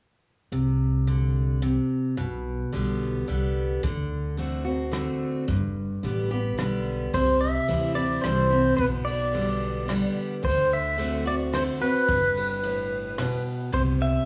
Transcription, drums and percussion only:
3.83 kick
4.93 cross-stick
5.49 kick
6.59 cross-stick
7.14 kick, ride
7.68 ride
8.24 cross-stick, ride
8.79 kick, ride
9.07 ride
9.34 ride
9.89 cross-stick, ride
10.44 kick, ride
10.99 ride
11.54 cross-stick, ride
12.09 kick, ride
12.36 ride
12.63 ride
13.18 cross-stick, ride
13.73 kick, ride

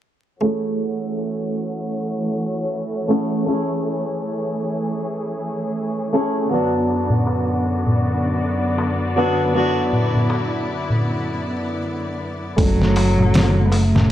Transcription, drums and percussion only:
7.10 darbuka dum
7.26 darbuka tek
7.86 darbuka dum
8.78 darbuka tek
9.93 darbuka dum
10.15 darbuka dum
10.30 darbuka tek
10.90 darbuka dum
12.58 kick, open hi-hat, darbuka tek
12.82 snare
12.96 open hi-hat, darbuka tek
13.18 darbuka tek, darbuka dum
13.34 snare, open hi-hat, darbuka tek
13.72 open hi-hat, darbuka tek
13.95 snare, darbuka tek, darbuka dum

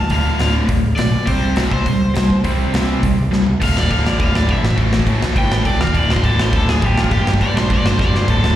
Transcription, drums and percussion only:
0.10 kick, open hi-hat
0.39 snare, open hi-hat
0.69 kick, open hi-hat
0.98 snare, open hi-hat
1.27 kick, open hi-hat
1.56 snare, open hi-hat
1.72 kick
1.86 kick, open hi-hat
2.15 snare, open hi-hat
2.30 kick
2.44 kick, open hi-hat
2.74 snare, open hi-hat
3.03 kick, open hi-hat
3.33 snare
3.46 floor tom
3.62 kick, crash
3.77 snare
3.83 kick
3.91 kick, crash
4.06 snare
4.20 kick, crash
4.35 snare
4.49 kick, crash
4.65 snare
4.70 kick
4.78 kick, crash
4.93 snare
5.00 kick
5.07 kick, crash
5.22 snare
5.36 kick, crash
5.52 snare
5.65 kick, crash
5.81 snare
5.87 kick
5.95 kick, crash
6.10 snare
6.16 kick
6.24 kick, crash
6.39 snare
6.53 kick, crash
6.69 snare
6.82 kick, crash
6.98 snare
7.04 kick
7.11 kick, crash
7.27 snare
7.34 kick
7.41 kick, crash
7.57 snare
7.70 kick, crash
7.86 snare
7.99 kick, snare
8.15 snare
8.28 kick, crash
8.44 snare
8.50 kick

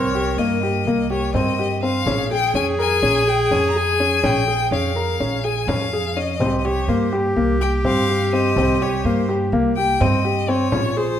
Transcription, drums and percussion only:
0.62 frame drum
1.34 frame drum
2.06 frame drum
2.79 frame drum
3.51 frame drum
4.23 frame drum
4.96 frame drum
5.20 frame drum
5.68 frame drum
6.41 frame drum
7.12 frame drum
7.84 frame drum
8.56 frame drum
9.29 frame drum
10.00 frame drum
10.72 frame drum

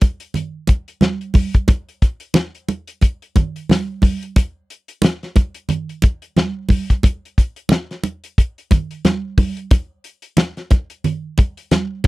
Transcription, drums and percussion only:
0.01 kick, closed hi-hat, muted conga
0.20 closed hi-hat
0.34 closed hi-hat, muted conga, low conga
0.67 kick, closed hi-hat, muted conga
0.88 closed hi-hat
1.01 snare, closed hi-hat, high conga
1.21 closed hi-hat
1.34 kick, open hi-hat, high conga
1.54 kick, closed hi-hat
1.68 kick, closed hi-hat, muted conga
1.89 closed hi-hat
2.02 kick, closed hi-hat
2.20 closed hi-hat
2.34 snare, closed hi-hat, high conga
2.55 closed hi-hat
2.69 closed hi-hat, muted conga
2.88 closed hi-hat
3.01 kick, closed hi-hat, muted conga
3.22 closed hi-hat
3.36 kick, closed hi-hat, muted conga, low conga
3.56 closed hi-hat
3.69 snare, closed hi-hat, high conga
4.02 kick, open hi-hat, high conga
4.23 closed hi-hat
4.36 kick, closed hi-hat, muted conga
4.70 closed hi-hat
4.88 closed hi-hat
5.02 snare, closed hi-hat, high conga
5.23 snare, closed hi-hat
5.36 kick, closed hi-hat, muted conga
5.55 closed hi-hat
5.69 closed hi-hat, muted conga, low conga
5.89 closed hi-hat
6.02 kick, closed hi-hat, muted conga
6.22 closed hi-hat
6.37 snare, closed hi-hat, high conga
6.69 kick, open hi-hat, high conga
6.90 kick, closed hi-hat
7.03 kick, closed hi-hat, muted conga
7.25 closed hi-hat
7.38 kick, closed hi-hat
7.56 closed hi-hat
7.69 snare, closed hi-hat, high conga
7.91 snare, closed hi-hat
8.03 closed hi-hat, muted conga
8.24 closed hi-hat
8.38 kick, closed hi-hat
8.58 closed hi-hat
8.71 kick, closed hi-hat, muted conga, low conga
8.91 closed hi-hat
9.05 snare, closed hi-hat, high conga
9.38 kick, open hi-hat, high conga
9.57 closed hi-hat
9.71 kick, closed hi-hat, muted conga
10.04 closed hi-hat
10.22 closed hi-hat
10.37 snare, closed hi-hat, high conga
10.57 snare, closed hi-hat
10.70 kick, closed hi-hat, muted conga
10.90 closed hi-hat
11.04 closed hi-hat, low conga
11.38 kick, closed hi-hat, muted conga
11.57 closed hi-hat
11.71 snare, closed hi-hat, high conga
12.04 open hi-hat, high conga

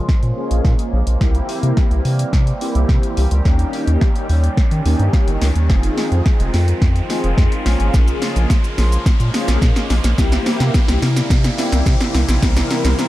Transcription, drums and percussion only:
0.09 kick, snare
0.23 closed hi-hat
0.51 closed hi-hat
0.65 kick, snare
0.79 closed hi-hat
1.07 closed hi-hat
1.21 kick, snare
1.35 closed hi-hat
1.49 open hi-hat
1.63 closed hi-hat
1.77 kick, snare
1.91 closed hi-hat
2.05 open hi-hat
2.19 closed hi-hat
2.33 kick, snare
2.47 closed hi-hat
2.61 open hi-hat
2.75 closed hi-hat
2.89 kick, snare
3.03 closed hi-hat
3.17 open hi-hat
3.31 closed hi-hat
3.45 kick, snare
3.59 closed hi-hat
3.73 open hi-hat
3.87 closed hi-hat
4.01 kick, snare
4.16 closed hi-hat
4.29 open hi-hat
4.44 closed hi-hat
4.57 kick, snare
4.71 closed hi-hat
4.86 open hi-hat
4.99 closed hi-hat
5.13 kick, snare
5.28 closed hi-hat
5.42 snare, open hi-hat
5.56 closed hi-hat
5.70 kick, snare
5.83 closed hi-hat
5.97 snare, open hi-hat
6.12 closed hi-hat
6.26 kick, snare
6.40 closed hi-hat
6.54 snare, open hi-hat
6.68 closed hi-hat
6.82 kick, snare
6.96 closed hi-hat
7.10 snare, open hi-hat
7.24 closed hi-hat
7.38 kick, snare
7.52 closed hi-hat
7.66 snare, open hi-hat
7.80 closed hi-hat
7.94 kick, snare, shaker
8.08 closed hi-hat, shaker
8.22 snare, open hi-hat, shaker
8.36 closed hi-hat, shaker
8.50 kick, snare, shaker
8.64 closed hi-hat, shaker
8.78 snare, open hi-hat, shaker
8.92 closed hi-hat, shaker
9.06 kick, snare, shaker
9.20 closed hi-hat, shaker
9.34 snare, open hi-hat, shaker
9.48 snare, closed hi-hat, shaker
9.62 kick, snare, shaker
9.76 snare, closed hi-hat, shaker
9.90 snare, open hi-hat, shaker
10.04 snare, closed hi-hat, shaker
10.18 kick, snare, shaker
10.32 snare, closed hi-hat, shaker
10.46 snare, open hi-hat, shaker
10.60 snare, closed hi-hat, shaker
10.74 kick, snare, shaker
10.88 snare, closed hi-hat, shaker
11.02 snare, open hi-hat, shaker
11.16 snare, closed hi-hat, shaker
11.30 kick, snare, shaker
11.44 snare, closed hi-hat, shaker
11.58 snare, open hi-hat, shaker
11.72 snare, closed hi-hat, shaker
11.86 kick, snare, shaker
12.00 snare, closed hi-hat, shaker
12.14 snare, open hi-hat, shaker
12.28 snare, closed hi-hat, shaker
12.42 kick, snare, shaker
12.56 snare, closed hi-hat, shaker
12.70 snare, open hi-hat, shaker
12.85 snare, closed hi-hat, shaker
12.99 snare, shaker

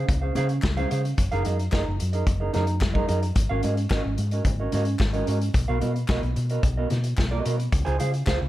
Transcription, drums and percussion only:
0.09 kick, closed hi-hat, muted conga, low conga
0.35 closed hi-hat, muted conga, low conga
0.49 closed hi-hat
0.62 kick, snare, clap, high conga
0.77 closed hi-hat, high conga
0.91 closed hi-hat
1.05 closed hi-hat
1.17 kick, closed hi-hat, muted conga
1.32 closed hi-hat
1.45 closed hi-hat, muted conga
1.59 closed hi-hat
1.72 kick, snare, clap, high conga
2.00 closed hi-hat
2.13 closed hi-hat
2.27 kick, closed hi-hat, muted conga
2.54 snare, closed hi-hat, muted conga, low conga
2.67 closed hi-hat
2.81 kick, snare, clap, high conga
2.95 kick, high conga
3.09 closed hi-hat
3.23 closed hi-hat
3.35 kick, closed hi-hat, muted conga
3.63 closed hi-hat, muted conga
3.77 closed hi-hat
3.90 kick, snare, clap, high conga
4.18 closed hi-hat
4.31 closed hi-hat
4.45 kick, closed hi-hat, muted conga, low conga
4.72 closed hi-hat, muted conga, low conga
4.85 closed hi-hat
4.99 kick, snare, clap, high conga
5.13 closed hi-hat, high conga
5.27 closed hi-hat
5.41 closed hi-hat
5.54 kick, closed hi-hat, muted conga
5.81 closed hi-hat, muted conga
5.96 closed hi-hat
6.08 kick, snare, clap, high conga
6.23 closed hi-hat
6.36 closed hi-hat
6.49 closed hi-hat
6.63 kick, closed hi-hat
6.90 snare, closed hi-hat, muted conga, low conga
7.04 closed hi-hat
7.17 kick, snare, clap, high conga
7.32 high conga
7.45 closed hi-hat
7.60 closed hi-hat
7.72 kick, closed hi-hat, muted conga
7.86 closed hi-hat
8.00 closed hi-hat, muted conga
8.14 closed hi-hat
8.26 kick, snare, clap, high conga

